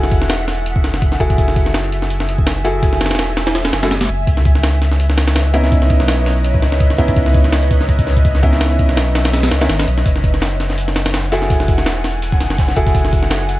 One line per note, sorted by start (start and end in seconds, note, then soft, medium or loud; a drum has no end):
0.00 0.23 F#1 loud
0.00 1.18 E4 medium
0.00 1.18 F#4 medium
0.00 1.18 G#4 loud
0.00 1.18 A4 loud
0.00 10.02 E5 medium
0.00 1.35 F#5 medium
0.00 snare soft
0.12 kick loud
0.12 open hi-hat medium
0.22 0.83 E1 loud
0.22 snare medium
0.30 snare loud
0.30 open hi-hat medium
0.48 snare medium
0.48 open hi-hat medium
0.66 open hi-hat medium
0.76 kick loud
0.84 1.19 F#1 medium
0.84 snare medium
0.84 open hi-hat medium
0.94 snare medium
1.02 kick loud
1.02 open hi-hat medium
1.12 snare soft
1.20 1.36 F#1 loud
1.20 2.63 E4 medium
1.20 2.63 F#4 medium
1.20 2.63 G#4 loud
1.20 2.63 A4 loud
1.20 kick medium
1.20 open hi-hat medium
1.30 kick loud
1.30 open hi-hat medium
1.38 3.12 F#1 loud
1.38 4.24 G#5 medium
1.38 kick loud
1.38 open hi-hat medium
1.48 snare soft
1.56 kick loud
1.56 open hi-hat medium
1.66 snare soft
1.74 snare loud
1.74 open hi-hat medium
1.84 closed hi-hat soft
1.92 open hi-hat medium
2.02 snare soft
2.10 open hi-hat medium
2.20 snare medium
2.29 open hi-hat medium
2.38 kick medium
2.47 snare loud
2.47 open hi-hat medium
2.64 3.81 E4 medium
2.64 3.81 F#4 medium
2.64 4.07 G#4 medium
2.64 3.81 A4 loud
2.64 open hi-hat medium
2.83 kick loud
2.83 open hi-hat medium
2.93 snare soft
3.01 snare medium
3.01 open hi-hat medium
3.06 snare medium
3.06 open hi-hat medium
3.11 3.72 E1 medium
3.11 snare medium
3.11 open hi-hat medium
3.15 snare medium
3.15 open hi-hat medium
3.19 snare loud
3.19 open hi-hat medium
3.37 snare loud
3.37 open hi-hat medium
3.47 snare loud
3.47 open hi-hat medium
3.55 snare loud
3.55 open hi-hat medium
3.65 snare loud
3.65 open hi-hat medium
3.73 4.08 F#1 medium
3.73 snare loud
3.73 open hi-hat medium
3.83 3.90 G#3 medium
3.83 3.90 E4 medium
3.83 3.90 F#4 medium
3.83 3.90 A4 medium
3.83 snare loud
3.83 open hi-hat medium
3.91 snare loud
3.91 open hi-hat medium
4.01 snare loud
4.01 open hi-hat medium
4.09 4.26 F#1 loud
4.27 6.01 C#2 loud
4.27 10.02 B4 medium
4.27 10.02 C#5 medium
4.27 10.02 D#5 medium
4.27 kick loud
4.27 open hi-hat medium
4.37 snare soft
4.45 kick loud
4.45 open hi-hat medium
4.55 snare soft
4.63 snare loud
4.63 open hi-hat medium
4.73 closed hi-hat soft
4.82 snare soft
4.82 open hi-hat medium
4.92 snare soft
5.00 open hi-hat medium
5.10 snare medium
5.18 snare loud
5.18 open hi-hat medium
5.28 snare loud
5.28 open hi-hat medium
5.36 snare loud
5.36 open hi-hat medium
5.54 6.96 B3 medium
5.54 6.96 C#4 medium
5.54 6.96 D#4 loud
5.54 6.96 E4 loud
5.54 open hi-hat medium
5.64 snare soft
5.72 kick loud
5.72 open hi-hat medium
5.82 snare soft
5.90 kick loud
5.90 open hi-hat medium
6.00 6.61 B1 loud
6.00 snare medium
6.08 snare loud
6.08 open hi-hat medium
6.26 snare medium
6.26 open hi-hat medium
6.44 open hi-hat medium
6.54 kick loud
6.62 6.97 C#2 medium
6.62 snare medium
6.62 open hi-hat medium
6.72 snare medium
6.80 kick loud
6.80 open hi-hat medium
6.90 snare soft
6.98 7.15 C#2 loud
6.98 8.41 B3 medium
6.98 8.41 C#4 medium
6.98 8.41 D#4 medium
6.98 8.41 E4 loud
6.98 kick medium
6.98 open hi-hat medium
7.08 kick loud
7.08 open hi-hat medium
7.16 8.91 C#2 loud
7.16 kick loud
7.16 open hi-hat medium
7.26 snare soft
7.34 kick loud
7.34 open hi-hat medium
7.44 snare soft
7.53 snare loud
7.53 open hi-hat medium
7.63 closed hi-hat soft
7.71 kick loud
7.71 open hi-hat medium
7.81 snare soft
7.89 kick medium
7.89 open hi-hat medium
7.99 kick loud
7.99 open hi-hat medium
8.07 snare soft
8.17 kick medium
8.17 open hi-hat medium
8.25 kick loud
8.25 open hi-hat medium
8.35 snare soft
8.43 9.60 B3 medium
8.43 9.60 C#4 medium
8.43 9.86 D#4 loud
8.43 9.60 E4 loud
8.43 kick medium
8.43 open hi-hat medium
8.53 snare soft
8.61 snare loud
8.61 open hi-hat medium
8.71 closed hi-hat soft
8.79 kick medium
8.79 open hi-hat medium
8.89 9.50 B1 loud
8.89 snare medium
8.97 snare loud
8.97 open hi-hat medium
9.15 snare loud
9.15 open hi-hat medium
9.25 snare loud
9.25 open hi-hat medium
9.34 snare loud
9.34 open hi-hat medium
9.43 snare loud
9.43 open hi-hat medium
9.51 9.69 C#2 medium
9.51 snare loud
9.51 open hi-hat medium
9.61 9.68 D#3 medium
9.61 9.68 B3 medium
9.61 9.68 C#4 medium
9.61 9.68 E4 loud
9.61 snare loud
9.61 open hi-hat medium
9.69 9.86 G#1 loud
9.69 snare loud
9.69 open hi-hat medium
9.79 snare loud
9.79 open hi-hat medium
9.87 10.04 B1 loud
9.87 open hi-hat medium
9.98 snare medium
10.05 11.80 F#1 loud
10.05 13.60 F#5 medium
10.05 13.60 G#5 medium
10.05 kick loud
10.05 closed hi-hat medium
10.05 open hi-hat medium
10.16 snare soft
10.23 kick loud
10.23 closed hi-hat medium
10.23 open hi-hat medium
10.34 snare soft
10.41 snare loud
10.41 closed hi-hat medium
10.41 open hi-hat medium
10.52 closed hi-hat soft
10.60 snare soft
10.60 closed hi-hat medium
10.60 open hi-hat medium
10.69 snare medium
10.69 snare soft
10.78 closed hi-hat medium
10.78 open hi-hat medium
10.88 snare medium
10.96 snare loud
10.96 closed hi-hat medium
10.96 open hi-hat medium
11.06 snare loud
11.06 open hi-hat medium
11.14 snare loud
11.14 closed hi-hat medium
11.14 open hi-hat medium
11.24 closed hi-hat soft
11.32 12.75 E4 medium
11.32 12.75 F#4 medium
11.32 12.75 G#4 medium
11.32 12.75 A4 loud
11.32 snare loud
11.32 closed hi-hat medium
11.32 open hi-hat medium
11.42 snare soft
11.50 kick loud
11.50 snare soft
11.50 closed hi-hat medium
11.50 open hi-hat medium
11.60 snare soft
11.68 kick loud
11.68 closed hi-hat medium
11.68 open hi-hat medium
11.78 12.39 E1 medium
11.78 snare medium
11.86 snare loud
11.86 closed hi-hat medium
11.86 open hi-hat medium
12.04 snare medium
12.04 closed hi-hat medium
12.04 open hi-hat medium
12.22 closed hi-hat medium
12.22 open hi-hat medium
12.32 kick medium
12.32 snare soft
12.40 12.75 F#1 medium
12.40 snare medium
12.40 closed hi-hat medium
12.40 open hi-hat medium
12.50 snare medium
12.58 kick loud
12.58 snare loud
12.58 closed hi-hat loud
12.58 open hi-hat medium
12.68 snare soft
12.76 12.93 F#1 loud
12.76 13.60 E4 medium
12.76 13.60 F#4 medium
12.76 13.60 G#4 medium
12.76 13.60 A4 loud
12.76 kick medium
12.76 closed hi-hat medium
12.76 open hi-hat medium
12.87 kick loud
12.87 snare medium
12.87 open hi-hat medium
12.95 13.60 F#1 loud
12.95 kick loud
12.95 closed hi-hat medium
12.95 open hi-hat medium
13.05 snare soft
13.13 kick loud
13.13 closed hi-hat medium
13.13 open hi-hat medium
13.23 snare soft
13.30 snare loud
13.30 closed hi-hat medium
13.30 open hi-hat medium
13.41 closed hi-hat soft
13.49 closed hi-hat medium
13.49 open hi-hat medium